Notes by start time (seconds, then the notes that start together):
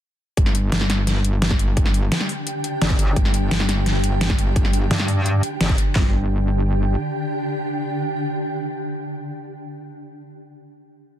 0.37 G1 D3 D4 G4 G5, kick, closed hi-hat
0.46 snare
0.55 closed hi-hat
0.72 G1, snare, closed hi-hat
0.81 snare
0.90 snare, closed hi-hat
1.07 snare, closed hi-hat
1.25 closed hi-hat
1.42 snare, closed hi-hat
1.51 kick, snare
1.59 closed hi-hat
1.77 kick, closed hi-hat
1.86 snare
1.94 closed hi-hat
2.12 snare, closed hi-hat
2.20 snare
2.29 open hi-hat
2.47 closed hi-hat
2.64 closed hi-hat
2.82 G1, snare, closed hi-hat
2.90 kick
2.99 closed hi-hat
3.16 G1, kick, closed hi-hat
3.25 snare
3.34 closed hi-hat
3.51 G1, snare, closed hi-hat
3.60 snare
3.69 snare, closed hi-hat
3.86 snare, closed hi-hat
4.04 closed hi-hat
4.21 snare, closed hi-hat
4.30 kick, snare
4.39 closed hi-hat
4.56 kick, closed hi-hat
4.65 snare
4.73 closed hi-hat
4.91 G2, snare, closed hi-hat
5.00 snare
5.08 open hi-hat
5.26 closed hi-hat
5.43 closed hi-hat
5.61 G1, snare, closed hi-hat
5.69 kick
5.78 closed hi-hat
5.96 G1 D3 D4 G4 G5, kick, snare, clap